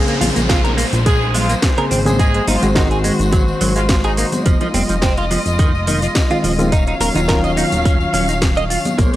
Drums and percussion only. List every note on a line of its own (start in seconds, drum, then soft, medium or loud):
0.08 closed hi-hat soft
0.08 tambourine soft
0.21 open hi-hat loud
0.21 high bongo medium
0.21 high conga medium
0.21 low conga medium
0.21 cabasa medium
0.36 closed hi-hat medium
0.36 tambourine medium
0.36 cabasa soft
0.49 kick loud
0.49 snare loud
0.49 closed hi-hat medium
0.49 tambourine medium
0.49 cabasa soft
0.65 closed hi-hat soft
0.65 tambourine soft
0.65 high bongo medium
0.78 open hi-hat medium
0.78 high conga medium
0.78 cabasa medium
0.93 closed hi-hat medium
0.93 tambourine medium
0.93 cabasa soft
1.06 kick loud
1.06 closed hi-hat medium
1.06 tambourine medium
1.06 cabasa soft
1.21 tambourine soft
1.21 high bongo medium
1.34 open hi-hat loud
1.34 high conga medium
1.34 low conga loud
1.34 cabasa medium
1.49 closed hi-hat medium
1.49 tambourine medium
1.49 cabasa soft
1.62 kick loud
1.62 snare loud
1.62 closed hi-hat medium
1.62 tambourine medium
1.62 high bongo medium
1.62 cabasa soft
1.78 closed hi-hat soft
1.78 tambourine soft
1.91 open hi-hat medium
1.91 cabasa medium
2.06 closed hi-hat medium
2.06 tambourine medium
2.06 high conga loud
2.06 low conga medium
2.06 cabasa soft
2.19 kick loud
2.19 closed hi-hat medium
2.19 tambourine medium
2.19 high bongo medium
2.19 cabasa soft
2.34 closed hi-hat soft
2.34 tambourine soft
2.47 open hi-hat loud
2.47 high conga loud
2.47 low conga medium
2.47 cabasa medium
2.62 closed hi-hat medium
2.62 tambourine medium
2.62 high bongo medium
2.62 cabasa soft
2.75 kick loud
2.75 snare loud
2.75 closed hi-hat medium
2.75 tambourine medium
2.75 cabasa soft
2.91 closed hi-hat soft
2.91 tambourine soft
3.04 open hi-hat loud
3.04 high conga medium
3.04 cabasa medium
3.19 closed hi-hat medium
3.19 tambourine medium
3.19 high bongo medium
3.19 cabasa soft
3.32 kick loud
3.32 closed hi-hat medium
3.32 tambourine medium
3.32 cabasa soft
3.48 tambourine soft
3.61 open hi-hat loud
3.61 high bongo medium
3.61 low conga medium
3.61 cabasa medium
3.76 closed hi-hat medium
3.76 tambourine medium
3.76 cabasa soft
3.89 kick loud
3.89 snare loud
3.89 closed hi-hat medium
3.89 tambourine medium
3.89 cabasa soft
4.04 closed hi-hat soft
4.04 tambourine soft
4.17 open hi-hat loud
4.17 high bongo medium
4.17 cabasa medium
4.32 closed hi-hat medium
4.32 tambourine medium
4.32 high conga loud
4.32 low conga loud
4.32 cabasa soft
4.45 kick loud
4.45 closed hi-hat medium
4.45 tambourine medium
4.45 cabasa soft
4.61 closed hi-hat soft
4.61 tambourine soft
4.61 high bongo medium
4.74 open hi-hat loud
4.74 high conga loud
4.74 low conga medium
4.74 cabasa medium
4.89 closed hi-hat medium
4.89 tambourine medium
4.89 cabasa soft
5.02 kick loud
5.02 snare loud
5.02 closed hi-hat medium
5.02 tambourine medium
5.02 cabasa soft
5.17 closed hi-hat soft
5.17 tambourine soft
5.17 high bongo medium
5.31 open hi-hat loud
5.31 high conga medium
5.31 cabasa medium
5.46 closed hi-hat medium
5.46 tambourine medium
5.46 cabasa soft
5.59 kick loud
5.59 closed hi-hat medium
5.59 tambourine medium
5.59 high bongo medium
5.59 cabasa soft
5.75 tambourine soft
5.87 open hi-hat loud
5.87 high conga medium
5.87 low conga medium
5.87 cabasa medium
6.02 closed hi-hat medium
6.02 tambourine medium
6.02 cabasa soft
6.15 kick loud
6.15 snare loud
6.15 closed hi-hat medium
6.15 tambourine medium
6.15 high bongo medium
6.15 cabasa soft
6.31 closed hi-hat soft
6.31 tambourine soft
6.44 open hi-hat medium
6.44 cabasa medium
6.59 closed hi-hat soft
6.59 tambourine medium
6.59 high bongo medium
6.59 high conga loud
6.59 low conga loud
6.59 cabasa soft
6.72 kick loud
6.72 closed hi-hat medium
6.72 tambourine medium
6.72 cabasa soft
6.87 closed hi-hat soft
6.87 tambourine soft
7.01 open hi-hat loud
7.01 high conga medium
7.01 low conga medium
7.01 cabasa medium
7.15 closed hi-hat medium
7.15 tambourine medium
7.15 high bongo medium
7.15 cabasa soft
7.28 kick loud
7.28 snare loud
7.28 closed hi-hat medium
7.28 tambourine medium
7.28 cabasa soft
7.44 closed hi-hat soft
7.44 tambourine soft
7.57 open hi-hat loud
7.57 high bongo medium
7.57 high conga medium
7.57 cabasa medium
7.72 closed hi-hat medium
7.72 tambourine medium
7.72 cabasa soft
7.85 kick loud
7.85 closed hi-hat medium
7.85 tambourine medium
7.85 cabasa soft
8.01 tambourine soft
8.13 open hi-hat loud
8.13 high bongo medium
8.13 low conga loud
8.13 cabasa medium
8.28 closed hi-hat medium
8.28 tambourine medium
8.28 cabasa soft
8.42 kick loud
8.42 snare loud
8.42 closed hi-hat medium
8.42 tambourine medium
8.42 cabasa soft
8.55 closed hi-hat soft
8.55 tambourine soft
8.55 high bongo medium
8.70 open hi-hat medium
8.70 cabasa medium
8.85 closed hi-hat soft
8.85 tambourine medium
8.85 high conga loud
8.85 low conga medium
8.85 cabasa soft
8.98 kick loud
8.98 closed hi-hat medium
8.98 tambourine medium
8.98 cabasa soft
9.13 tambourine soft